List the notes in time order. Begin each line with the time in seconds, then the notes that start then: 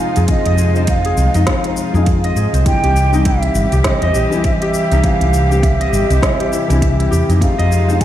Already playing: C3 F3 G#3 C4 D#4 F4 G#4 C5 D#5 F5
0.16 F2 G#4, closed hi-hat, shaker
0.27 F3 G#3 C4 D#4 D#5, kick, closed hi-hat, shaker
0.46 F2 D#5, closed hi-hat
0.58 G#4, shaker
0.74 F3 G#3 C4 C5, shaker
0.78 D#4
0.87 F5, kick, closed hi-hat, shaker
1.05 G#4, closed hi-hat
1.17 C2, shaker
1.34 F2 D#4, closed hi-hat, shaker
1.46 F3 G#3 C4 D#4 F4 F5, kick, snare, closed hi-hat, shaker
1.64 closed hi-hat
1.77 shaker
1.93 F2 F3 G#3 C4 D#4 G#4, shaker
2.06 kick, closed hi-hat, shaker
2.24 D#5, closed hi-hat
2.36 G#2 G#4, shaker
2.53 C2 C5, closed hi-hat, shaker
2.66 C3 E3 G3 C4 E4 G4 G5, kick, closed hi-hat, shaker
2.84 C2 G4, closed hi-hat
2.96 shaker
3.11 E3 G3 C4 D#4, shaker
3.25 E4 E5, kick, closed hi-hat, shaker
3.43 closed hi-hat
3.55 G1, shaker
3.72 C2 G4, closed hi-hat, shaker
3.84 E3 G3 C4 D#5, kick, snare, closed hi-hat, shaker
4.02 E2 D#5, closed hi-hat
4.14 A#1 G4, shaker
4.30 E3 G3 C4 C5, shaker
4.34 E4
4.44 E5, kick, closed hi-hat, shaker
4.53 D#5
4.62 G4 E5, closed hi-hat
4.74 shaker
4.92 C2 D#4, closed hi-hat, shaker
5.03 E3 G3 C4 E4 F5, kick, closed hi-hat, shaker
5.21 C2, closed hi-hat
5.34 shaker
5.49 E3 G3 C4 G4, shaker
5.63 E5, kick, closed hi-hat, shaker
5.81 D#5, closed hi-hat
5.93 G1 G4, shaker
6.10 C2 C5, closed hi-hat, shaker
6.21 E3 G3 C4 E4 E5, kick, snare, closed hi-hat, shaker
6.40 G4, closed hi-hat
6.52 E4, shaker
6.68 C2 E3 G3 C4 E4, closed hi-hat, shaker
6.82 E5, kick, closed hi-hat, shaker
6.99 E4, closed hi-hat
7.11 E2 G4, shaker
7.29 F2 D#4, closed hi-hat, shaker
7.41 F3 G#3 C4 D#4 F4 F5, kick, closed hi-hat, shaker
7.58 F2 D#5, closed hi-hat
7.71 G#4, shaker
7.87 F3 G#3 C4 C5, shaker
7.91 D#4
8.01 G#5, kick, closed hi-hat, shaker